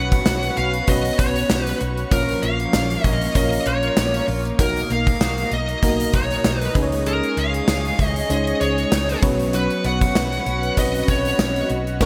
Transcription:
Already playing: fretless electric bass B1, fm electric piano B3 C#4 F#4 B4 C#5, clean electric guitar B3, analog synth pad F#4 B4 C#6, lead electric guitar F#5
0.12 kick, closed hi-hat
0.26 fretless electric bass B1, clean electric guitar F#4, snare, tambourine
0.43 closed hi-hat
0.57 fretless electric bass B1, clean electric guitar C#4, lead electric guitar F5, closed hi-hat
0.73 closed hi-hat
0.87 fretless electric bass B1, fm electric piano B3 C#4 F#4 B4 C#5, clean electric guitar B3, lead electric guitar D#5, kick, closed hi-hat
1.05 closed hi-hat
1.19 fretless electric bass B1, clean electric guitar F#4, lead electric guitar C#5, kick, closed hi-hat
1.36 closed hi-hat
1.50 fretless electric bass B1, clean electric guitar C#4, snare, tambourine
1.63 lead electric guitar B4, closed hi-hat
1.81 fretless electric bass B1, clean electric guitar F#4, closed hi-hat
1.97 closed hi-hat
2.11 fretless electric bass A#1, clean electric guitar F3, fm electric piano A#3 C#4 F4 A#4 C#5, analog synth pad A#3 F5, lead electric guitar A#4, kick, closed hi-hat
2.29 closed hi-hat
2.42 fretless electric bass A#1, clean electric guitar A#3, lead electric guitar F5, closed hi-hat
2.60 closed hi-hat
2.73 fretless electric bass A#1, clean electric guitar F4, snare, tambourine
2.90 closed hi-hat
3.04 fretless electric bass A#1, clean electric guitar C#4, lead electric guitar D#5, kick, closed hi-hat
3.21 closed hi-hat
3.35 fretless electric bass A#1, fm electric piano A#3 C#4 F4 A#4 C#5, clean electric guitar A#3, lead electric guitar D#5, kick, closed hi-hat
3.52 closed hi-hat
3.66 fretless electric bass A#1, clean electric guitar F4, lead electric guitar C#5, closed hi-hat
3.83 closed hi-hat
3.97 fretless electric bass A#1, clean electric guitar B3, snare, tambourine
4.14 clean electric guitar C#4, closed hi-hat
4.28 fretless electric bass A#1, clean electric guitar F4, open hi-hat
4.45 closed hi-hat
4.58 fretless electric bass B1, fm electric piano B2 A#3 D#4 F#4 A#4, clean electric guitar A#3, lead electric guitar A#4, analog synth pad D#5 A#5, kick, closed hi-hat
4.76 closed hi-hat
4.90 fretless electric bass B1, clean electric guitar A#3, lead electric guitar F5, closed hi-hat
5.07 kick, closed hi-hat
5.21 fretless electric bass B1, clean electric guitar F#4, snare, tambourine
5.38 closed hi-hat
5.51 fretless electric bass B1, clean electric guitar D#4, lead electric guitar D#5, closed hi-hat
5.69 closed hi-hat
5.83 fretless electric bass B1, fm electric piano B2 A#3 D#4 F#4 A#4, clean electric guitar A#3, kick, closed hi-hat
6.00 closed hi-hat
6.13 fretless electric bass B1, clean electric guitar F#4, lead electric guitar C#5, kick, closed hi-hat
6.30 closed hi-hat
6.44 fretless electric bass B1, clean electric guitar D#4, snare, tambourine
6.59 lead electric guitar B4, closed hi-hat
6.75 fretless electric bass C#2, fm electric piano G#3 C#4 D#4 G#4 B4, clean electric guitar G#3, analog synth pad G#4 C#6, kick, closed hi-hat
6.82 fm electric piano C#5
6.92 closed hi-hat
7.06 clean electric guitar G#3, lead electric guitar A#4, closed hi-hat
7.23 closed hi-hat
7.37 fretless electric bass C#2, clean electric guitar G#3, lead electric guitar F5, closed hi-hat
7.54 closed hi-hat
7.68 fretless electric bass C#2, clean electric guitar G#4, snare, tambourine
7.85 closed hi-hat
7.99 fretless electric bass C#2, clean electric guitar D#4, kick, closed hi-hat
8.06 lead electric guitar D#5
8.16 closed hi-hat
8.29 fretless electric bass C#2, fm electric piano G#3 C#4 D#4 G#4 C5, clean electric guitar G#3, lead electric guitar D#5, closed hi-hat
8.37 fm electric piano C#5
8.47 closed hi-hat
8.61 fretless electric bass C#2, clean electric guitar G#4, lead electric guitar C#5, closed hi-hat
8.78 closed hi-hat
8.92 fretless electric bass C#2, clean electric guitar D#4, snare, tambourine
9.09 closed hi-hat
9.22 fretless electric bass B1, clean electric guitar F#3, fm electric piano B3 C#4 F#4 B4 C#5, analog synth pad F#4 B4, kick, closed hi-hat
9.40 closed hi-hat
9.53 clean electric guitar F#3, lead electric guitar B4, closed hi-hat
9.70 closed hi-hat
9.84 fretless electric bass B1, clean electric guitar B3, lead electric guitar F#5, closed hi-hat
10.01 kick, closed hi-hat
10.15 fretless electric bass B1, clean electric guitar F#4, snare, tambourine
10.32 closed hi-hat
10.46 fretless electric bass B1, clean electric guitar C#4, closed hi-hat
10.63 closed hi-hat
10.77 fretless electric bass B1, fm electric piano B3 C4 F#4 B4 D#5, clean electric guitar B3, lead electric guitar D#5, kick, closed hi-hat
10.84 fm electric piano C#4
10.94 closed hi-hat
11.08 fretless electric bass B1, clean electric guitar F#4, lead electric guitar C#5, kick, closed hi-hat
11.25 closed hi-hat
11.38 fretless electric bass B1, clean electric guitar C#4, snare, tambourine
11.56 closed hi-hat
11.70 fretless electric bass B1, clean electric guitar F#4, closed hi-hat
11.87 closed hi-hat
12.01 fretless electric bass F#1, fm electric piano A#3 C#4 F#4 A#4 C#5, analog synth pad A#4, lead electric guitar A#4, kick, snare, crash

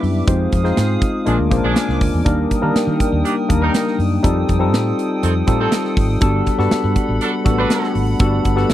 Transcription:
Already playing: tine electric piano G3 B3 D4 E4 G4 B4, analog synth pad G4 E5 D6
0.03 fretless electric bass F#2, open hi-hat
0.27 fretless electric bass F2, tine electric piano G#3 C4 D#4 F4 C5, analog synth pad G#4 F5 D#6, kick, closed hi-hat
0.52 fretless electric bass F2, kick, closed hi-hat
0.64 tine electric piano G#3 C4 D#4 F4 C5, snare
0.77 fretless electric bass G#2, snare, closed hi-hat
1.02 kick, closed hi-hat
1.25 fretless electric bass A#1, horn section F3 D4 G#4, tine electric piano G#3 A#3 D4 F4 A#4, analog synth pad A#4 G#5 D6, closed hi-hat
1.39 fretless electric bass D2
1.51 fretless electric bass A#1, tine electric piano G#3 A#3 C#4 F4 C5, kick, closed hi-hat
1.57 tine electric piano D4
1.63 fretless electric bass A#1, horn section F3 D4 G#4
1.76 snare, closed hi-hat
1.88 fretless electric bass C2, snare
2.01 fretless electric bass D2, kick, open hi-hat
2.14 fretless electric bass E2
2.25 fretless electric bass D#2, tine electric piano G3 A#3 D4 D#4 A#4, analog synth pad A#4 G5 D#6, kick, closed hi-hat
2.51 kick, closed hi-hat
2.62 fretless electric bass D#3, tine electric piano G3 A#3 D4 D#4 A#4
2.75 muted fretless electric bass stroke, snare, closed hi-hat
2.87 fretless electric bass D#3
3.00 kick, closed hi-hat
3.12 fretless electric bass D#2
3.25 horn section D#3 D4 G4, closed hi-hat
3.48 fretless electric bass D#2, tine electric piano G3 A#3 D4 D#4 A#4, kick, closed hi-hat
3.61 horn section G3 D#4 A#4
3.74 snare, closed hi-hat
3.88 snare
3.98 fretless electric bass F#2, open hi-hat
4.23 fretless electric bass F2, tine electric piano G3 C4 D#4 F4 A4, analog synth pad A4, kick, closed hi-hat
4.49 fretless electric bass F2, kick, closed hi-hat
4.59 tine electric piano G3 C4 D#4 F4 A4
4.73 fretless electric bass A2, snare, closed hi-hat
4.99 closed hi-hat
5.22 fretless electric bass F2, horn section D#3 C4 A4, closed hi-hat
5.47 fretless electric bass A2, tine electric piano G3 C4 D#4 F4 A4, kick, closed hi-hat
5.60 horn section D#3 C4 A4
5.72 snare, closed hi-hat
5.85 snare
5.97 fretless electric bass G#1, kick, open hi-hat
6.21 fretless electric bass G1, tine electric piano G3 B3 D4 F#4 A4, analog synth pad F#5 B5, kick, closed hi-hat
6.46 kick, closed hi-hat
6.58 fretless electric bass G2, tine electric piano G3 B3 D4 F#4 A4, snare
6.71 muted fretless electric bass stroke, snare, closed hi-hat
6.84 fretless electric bass G2
6.96 kick, closed hi-hat
7.08 fretless electric bass A1
7.21 horn section F#3 D4 A4, closed hi-hat
7.44 fretless electric bass A1, tine electric piano G3 A3 D4 F#4 A4, kick, closed hi-hat
7.51 tine electric piano B3
7.58 horn section F#3 D4 B4
7.70 snare, closed hi-hat
7.84 snare
7.95 fretless electric bass G#1, open hi-hat
8.19 fretless electric bass G1, tine electric piano G3 B3 D4 F#4 A4, kick, closed hi-hat
8.45 fretless electric bass G1, kick, closed hi-hat
8.56 tine electric piano G3 B3 D4 F#4 A4, snare
8.70 fretless electric bass B1, snare, closed hi-hat

